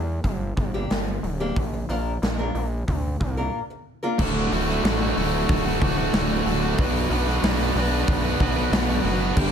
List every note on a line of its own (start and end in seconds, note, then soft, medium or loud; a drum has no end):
0.00 0.20 E2 medium
0.24 0.53 G1 medium
0.24 muted steel-string acoustic guitar stroke soft
0.24 kick medium
0.24 open hi-hat medium
0.57 0.86 G1 medium
0.57 kick medium
0.57 open hi-hat soft
0.74 0.96 G3 medium
0.74 0.96 A#3 medium
0.74 0.96 D4 medium
0.74 0.96 G4 medium
0.90 1.19 G1 medium
0.90 snare loud
0.90 open hi-hat medium
1.08 muted steel-string acoustic guitar stroke soft
1.23 1.52 D1 medium
1.23 open hi-hat soft
1.40 1.57 G3 medium
1.40 1.57 A#3 medium
1.40 1.57 D4 medium
1.40 1.57 G4 medium
1.56 1.85 A#1 medium
1.56 kick loud
1.56 open hi-hat medium
1.73 muted steel-string acoustic guitar stroke soft
1.89 2.18 A#1 medium
1.89 2.11 A#3 medium
1.89 2.11 D4 medium
1.89 2.11 F4 medium
1.89 2.12 A#4 medium
1.89 open hi-hat medium
2.22 2.51 A#1 medium
2.22 muted steel-string acoustic guitar stroke soft
2.22 snare loud
2.22 open hi-hat medium
2.39 2.61 A#3 medium
2.39 2.61 D4 medium
2.39 2.61 F4 medium
2.39 2.60 A#4 medium
2.55 2.84 A#1 medium
2.55 open hi-hat soft
2.88 3.16 D2 medium
2.88 muted steel-string acoustic guitar stroke soft
2.88 kick medium
2.88 open hi-hat medium
3.20 3.49 C2 medium
3.20 kick medium
3.20 open hi-hat medium
3.37 3.59 A#3 medium
3.37 3.59 D4 medium
3.37 3.59 F4 medium
3.37 3.59 A#4 medium
3.70 muted steel-string acoustic guitar stroke soft
4.03 4.20 A#3 medium
4.03 4.20 D4 medium
4.03 4.19 F4 medium
4.03 4.19 A#4 medium
4.18 4.48 D1 loud
4.18 4.83 D2 loud
4.18 4.50 A2 loud
4.18 4.51 D3 loud
4.18 4.52 A3 loud
4.18 4.53 F#4 loud
4.18 kick loud
4.18 crash loud
4.51 4.80 D1 loud
4.51 4.83 A2 medium
4.51 4.69 D3 medium
4.51 4.68 A3 medium
4.51 4.67 F#4 medium
4.51 open hi-hat medium
4.67 4.85 D3 medium
4.67 4.85 A3 medium
4.67 4.86 F#4 medium
4.67 snare soft
4.84 5.13 A1 loud
4.84 5.33 D2 medium
4.84 5.14 A2 loud
4.84 5.02 D3 medium
4.84 5.01 A3 loud
4.84 5.00 F#4 loud
4.84 snare loud
4.84 open hi-hat medium
5.01 5.15 D3 medium
5.01 5.16 A3 medium
5.01 5.17 F#4 medium
5.16 5.45 D1 medium
5.16 5.81 A2 medium
5.16 5.67 D3 medium
5.16 5.66 A3 medium
5.16 5.65 F#4 medium
5.16 open hi-hat medium
5.49 5.78 D1 loud
5.49 kick loud
5.49 open hi-hat medium
5.66 5.81 D3 medium
5.66 5.82 A3 medium
5.66 5.83 F#4 medium
5.81 6.10 D1 medium
5.81 6.13 A2 medium
5.81 5.98 D3 medium
5.81 5.98 A3 medium
5.81 5.96 F#4 loud
5.81 kick loud
5.81 open hi-hat medium
5.97 6.13 D3 medium
5.97 6.14 A3 medium
5.97 6.14 F#4 medium
6.13 6.42 D1 medium
6.13 6.76 D2 loud
6.13 6.44 A2 loud
6.13 6.45 D3 loud
6.13 6.46 A3 loud
6.13 6.46 F#4 loud
6.13 snare loud
6.13 open hi-hat loud
6.45 6.74 D1 medium
6.45 6.76 A2 medium
6.45 6.63 D3 medium
6.45 6.62 A3 medium
6.45 6.61 F#4 medium
6.45 open hi-hat medium
6.62 6.78 D3 medium
6.62 6.77 A3 medium
6.62 6.76 F#4 medium
6.78 7.07 B1 loud
6.78 7.40 B2 loud
6.78 7.41 F#3 loud
6.78 7.09 B3 loud
6.78 7.11 D4 loud
6.78 7.11 F#4 loud
6.78 7.11 B4 loud
6.78 kick loud
6.78 open hi-hat loud
7.10 7.39 B1 loud
7.10 7.27 B3 medium
7.10 7.28 D4 medium
7.10 7.26 F#4 medium
7.10 7.25 B4 medium
7.10 open hi-hat medium
7.26 7.42 B3 medium
7.26 7.43 D4 medium
7.26 7.43 F#4 medium
7.26 7.43 B4 medium
7.26 snare soft
7.42 7.71 B1 loud
7.42 7.91 B2 medium
7.42 7.91 F#3 medium
7.42 7.61 B3 loud
7.42 7.61 D4 loud
7.42 7.59 F#4 medium
7.42 7.58 B4 loud
7.42 snare loud
7.42 open hi-hat loud
7.59 7.75 B3 medium
7.59 7.77 D4 medium
7.59 7.77 F#4 medium
7.59 7.78 B4 medium
7.75 8.04 B1 medium
7.75 8.25 B3 medium
7.75 8.25 D4 medium
7.75 8.24 F#4 medium
7.75 open hi-hat medium
7.79 8.22 B4 medium
8.08 8.36 B1 medium
8.08 kick loud
8.08 open hi-hat loud
8.24 8.39 B3 medium
8.24 8.41 D4 medium
8.24 8.41 F#4 medium
8.24 8.42 B4 medium
8.40 8.68 B1 medium
8.40 8.57 B3 medium
8.40 8.57 D4 medium
8.40 8.56 F#4 loud
8.40 8.55 B4 medium
8.40 kick loud
8.40 open hi-hat medium
8.56 8.73 B3 medium
8.56 8.74 D4 medium
8.56 8.73 F#4 medium
8.56 8.74 B4 medium
8.71 9.00 B1 medium
8.71 9.35 B2 loud
8.71 9.35 F#3 loud
8.71 9.03 B3 loud
8.71 9.05 D4 medium
8.71 9.05 F#4 loud
8.71 9.05 B4 loud
8.71 snare loud
8.71 open hi-hat medium
9.04 9.33 F#1 loud
9.04 9.21 B3 medium
9.04 9.21 D4 medium
9.04 9.19 F#4 loud
9.04 9.19 B4 medium
9.04 open hi-hat medium
9.20 9.36 B3 medium
9.20 9.37 D4 medium
9.20 9.35 F#4 medium
9.20 9.35 B4 medium
9.36 9.52 G1 loud
9.36 9.52 G2 loud
9.36 9.52 D3 loud
9.36 9.52 G3 loud
9.36 9.52 A#3 loud
9.36 9.52 D4 loud
9.36 9.52 G4 loud
9.36 kick loud
9.36 crash loud